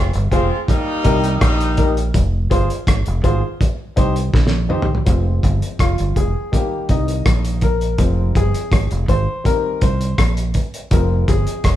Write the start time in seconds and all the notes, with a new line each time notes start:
Already playing: F1
0.14 G1, closed hi-hat
0.31 F1 G#3 C4 F4 G#4 C5, kick, closed hi-hat
0.68 G3 A#3 D#4, kick, closed hi-hat
1.04 C2 D#4 G4 A#4, kick, closed hi-hat
1.24 closed hi-hat
1.41 A#1 G3 A#3 D#4, kick, cross-stick, closed hi-hat
1.61 closed hi-hat
1.77 D#4 G4 A#4, kick, closed hi-hat
1.97 closed hi-hat
2.14 F1, kick, closed hi-hat
2.50 G1 F4 G#4 C5, kick, closed hi-hat
2.70 closed hi-hat
2.87 G#1, kick, cross-stick, closed hi-hat
3.06 F1, closed hi-hat
3.23 G#1 F4 G#4 C5, kick, closed hi-hat
3.61 kick, closed hi-hat
3.96 C2 D#4 G4 C5, kick, closed hi-hat
4.16 closed hi-hat
4.34 A#1, kick, snare
4.47 snare
4.69 D#4 G4 C5, mid tom
4.82 floor tom
4.95 floor tom
5.05 F1 F3 G#3 C4, kick, closed hi-hat
5.43 G1, kick, closed hi-hat
5.62 closed hi-hat
5.79 F1 F4, kick, cross-stick, closed hi-hat
5.98 G1, closed hi-hat
6.16 F1 G#4, kick, closed hi-hat
6.52 D#3 G3 A#3 G4, kick, closed hi-hat
6.89 C2 D#4, kick, closed hi-hat
7.08 closed hi-hat
7.26 A#1, kick, cross-stick, closed hi-hat
7.45 closed hi-hat
7.61 A#4, kick, closed hi-hat
7.81 closed hi-hat
7.98 F1 F3 G#3 C4, kick, closed hi-hat
8.35 G1 G#4, kick, closed hi-hat
8.54 closed hi-hat
8.72 G#1, kick, cross-stick, closed hi-hat
8.91 F1, closed hi-hat
9.08 G#1 C5, kick, closed hi-hat
9.44 D#3 G3 C4 A#4, kick, closed hi-hat
9.81 C2 C5, kick, closed hi-hat
10.01 closed hi-hat
10.18 A#1, kick, cross-stick, closed hi-hat
10.37 closed hi-hat
10.54 kick, closed hi-hat
10.74 closed hi-hat
10.91 F1 F3 G#3 C4 A#4, kick, closed hi-hat
11.28 G1 G#4, kick, closed hi-hat
11.47 closed hi-hat
11.64 F1, kick, cross-stick, closed hi-hat